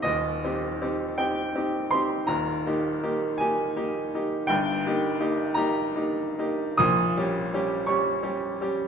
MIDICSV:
0, 0, Header, 1, 2, 480
1, 0, Start_track
1, 0, Tempo, 748130
1, 28, Time_signature, 6, 3, 24, 8
1, 1946, Tempo, 719424
1, 3386, Tempo, 763359
1, 3866, Tempo, 846262
1, 4346, Tempo, 715137
1, 5739, End_track
2, 0, Start_track
2, 0, Title_t, "Grand piano"
2, 0, Program_c, 0, 0
2, 0, Control_c, 0, 64, 127
2, 15, Note_on_c, 0, 75, 104
2, 22, Note_on_c, 0, 27, 70
2, 28, Note_on_c, 0, 39, 72
2, 39, Control_c, 0, 64, 0
2, 134, Control_c, 0, 64, 127
2, 262, Note_off_c, 0, 27, 0
2, 265, Note_off_c, 0, 39, 0
2, 284, Note_on_c, 0, 60, 57
2, 285, Note_on_c, 0, 63, 60
2, 288, Note_on_c, 0, 67, 64
2, 492, Note_off_c, 0, 60, 0
2, 492, Note_off_c, 0, 63, 0
2, 494, Note_off_c, 0, 67, 0
2, 524, Note_on_c, 0, 60, 60
2, 524, Note_on_c, 0, 67, 68
2, 528, Note_on_c, 0, 63, 61
2, 727, Note_off_c, 0, 60, 0
2, 727, Note_off_c, 0, 67, 0
2, 729, Note_off_c, 0, 63, 0
2, 736, Note_off_c, 0, 75, 0
2, 755, Note_on_c, 0, 79, 105
2, 757, Note_on_c, 0, 60, 58
2, 766, Note_on_c, 0, 63, 61
2, 768, Note_on_c, 0, 67, 65
2, 964, Note_off_c, 0, 60, 0
2, 970, Note_off_c, 0, 63, 0
2, 971, Note_off_c, 0, 67, 0
2, 997, Note_on_c, 0, 60, 54
2, 1000, Note_on_c, 0, 67, 64
2, 1002, Note_on_c, 0, 63, 60
2, 1209, Note_off_c, 0, 60, 0
2, 1211, Note_off_c, 0, 67, 0
2, 1212, Note_off_c, 0, 63, 0
2, 1223, Note_on_c, 0, 84, 112
2, 1231, Note_off_c, 0, 79, 0
2, 1231, Note_on_c, 0, 60, 59
2, 1234, Note_on_c, 0, 63, 60
2, 1245, Note_on_c, 0, 67, 67
2, 1448, Note_off_c, 0, 60, 0
2, 1450, Note_off_c, 0, 63, 0
2, 1456, Note_off_c, 0, 67, 0
2, 1456, Note_on_c, 0, 82, 108
2, 1461, Note_on_c, 0, 27, 74
2, 1462, Note_on_c, 0, 39, 75
2, 1468, Note_off_c, 0, 84, 0
2, 1482, Control_c, 0, 64, 0
2, 1583, Control_c, 0, 64, 127
2, 1698, Note_off_c, 0, 27, 0
2, 1699, Note_off_c, 0, 39, 0
2, 1708, Note_on_c, 0, 58, 63
2, 1711, Note_on_c, 0, 63, 65
2, 1714, Note_on_c, 0, 67, 68
2, 1922, Note_off_c, 0, 58, 0
2, 1923, Note_off_c, 0, 63, 0
2, 1925, Note_off_c, 0, 67, 0
2, 1944, Note_on_c, 0, 58, 64
2, 1945, Note_on_c, 0, 63, 61
2, 1948, Note_on_c, 0, 67, 74
2, 2164, Note_off_c, 0, 58, 0
2, 2165, Note_off_c, 0, 63, 0
2, 2166, Note_off_c, 0, 67, 0
2, 2176, Note_on_c, 0, 80, 108
2, 2182, Note_off_c, 0, 82, 0
2, 2192, Note_on_c, 0, 58, 66
2, 2193, Note_on_c, 0, 67, 68
2, 2196, Note_on_c, 0, 63, 60
2, 2408, Note_off_c, 0, 58, 0
2, 2409, Note_off_c, 0, 67, 0
2, 2410, Note_off_c, 0, 63, 0
2, 2432, Note_on_c, 0, 58, 62
2, 2435, Note_on_c, 0, 67, 69
2, 2436, Note_on_c, 0, 63, 66
2, 2650, Note_off_c, 0, 58, 0
2, 2652, Note_off_c, 0, 63, 0
2, 2652, Note_off_c, 0, 67, 0
2, 2688, Note_on_c, 0, 58, 60
2, 2689, Note_on_c, 0, 63, 62
2, 2692, Note_on_c, 0, 67, 71
2, 2901, Note_off_c, 0, 58, 0
2, 2901, Note_off_c, 0, 63, 0
2, 2903, Note_off_c, 0, 67, 0
2, 2906, Note_on_c, 0, 79, 127
2, 2911, Note_off_c, 0, 80, 0
2, 2913, Note_on_c, 0, 31, 81
2, 2921, Note_on_c, 0, 43, 87
2, 2927, Control_c, 0, 64, 0
2, 3034, Control_c, 0, 64, 127
2, 3145, Note_off_c, 0, 31, 0
2, 3149, Note_off_c, 0, 43, 0
2, 3165, Note_on_c, 0, 58, 70
2, 3170, Note_on_c, 0, 67, 76
2, 3172, Note_on_c, 0, 63, 70
2, 3368, Note_off_c, 0, 58, 0
2, 3371, Note_off_c, 0, 67, 0
2, 3372, Note_off_c, 0, 63, 0
2, 3392, Note_on_c, 0, 58, 66
2, 3393, Note_on_c, 0, 63, 68
2, 3395, Note_on_c, 0, 67, 70
2, 3594, Note_off_c, 0, 58, 0
2, 3594, Note_off_c, 0, 63, 0
2, 3595, Note_off_c, 0, 67, 0
2, 3607, Note_off_c, 0, 79, 0
2, 3607, Note_on_c, 0, 82, 112
2, 3618, Note_on_c, 0, 58, 66
2, 3620, Note_on_c, 0, 63, 71
2, 3627, Note_on_c, 0, 67, 80
2, 3843, Note_off_c, 0, 58, 0
2, 3844, Note_off_c, 0, 63, 0
2, 3848, Note_off_c, 0, 67, 0
2, 3867, Note_on_c, 0, 63, 66
2, 3870, Note_on_c, 0, 58, 60
2, 3870, Note_on_c, 0, 67, 66
2, 4089, Note_off_c, 0, 63, 0
2, 4091, Note_off_c, 0, 58, 0
2, 4091, Note_off_c, 0, 67, 0
2, 4110, Note_on_c, 0, 58, 64
2, 4113, Note_on_c, 0, 63, 68
2, 4116, Note_on_c, 0, 67, 69
2, 4322, Note_off_c, 0, 58, 0
2, 4324, Note_off_c, 0, 63, 0
2, 4325, Note_off_c, 0, 67, 0
2, 4331, Note_on_c, 0, 87, 121
2, 4335, Note_on_c, 0, 34, 81
2, 4341, Note_on_c, 0, 46, 90
2, 4343, Note_off_c, 0, 82, 0
2, 4358, Control_c, 0, 64, 0
2, 4475, Control_c, 0, 64, 127
2, 4582, Note_off_c, 0, 34, 0
2, 4586, Note_off_c, 0, 46, 0
2, 4594, Note_on_c, 0, 55, 70
2, 4596, Note_on_c, 0, 61, 71
2, 4596, Note_on_c, 0, 67, 73
2, 4808, Note_off_c, 0, 55, 0
2, 4809, Note_off_c, 0, 61, 0
2, 4809, Note_off_c, 0, 67, 0
2, 4837, Note_on_c, 0, 55, 70
2, 4842, Note_on_c, 0, 61, 72
2, 4845, Note_on_c, 0, 67, 75
2, 5045, Note_off_c, 0, 55, 0
2, 5048, Note_off_c, 0, 61, 0
2, 5050, Note_off_c, 0, 67, 0
2, 5058, Note_off_c, 0, 87, 0
2, 5060, Note_on_c, 0, 85, 102
2, 5071, Note_on_c, 0, 61, 72
2, 5075, Note_on_c, 0, 55, 65
2, 5080, Note_on_c, 0, 67, 66
2, 5284, Note_off_c, 0, 61, 0
2, 5286, Note_off_c, 0, 55, 0
2, 5288, Note_off_c, 0, 67, 0
2, 5305, Note_on_c, 0, 55, 64
2, 5305, Note_on_c, 0, 61, 69
2, 5307, Note_on_c, 0, 67, 69
2, 5522, Note_off_c, 0, 55, 0
2, 5522, Note_off_c, 0, 61, 0
2, 5523, Note_off_c, 0, 67, 0
2, 5562, Note_on_c, 0, 61, 59
2, 5563, Note_on_c, 0, 55, 65
2, 5566, Note_on_c, 0, 67, 72
2, 5739, Note_off_c, 0, 55, 0
2, 5739, Note_off_c, 0, 61, 0
2, 5739, Note_off_c, 0, 67, 0
2, 5739, Note_off_c, 0, 85, 0
2, 5739, End_track
0, 0, End_of_file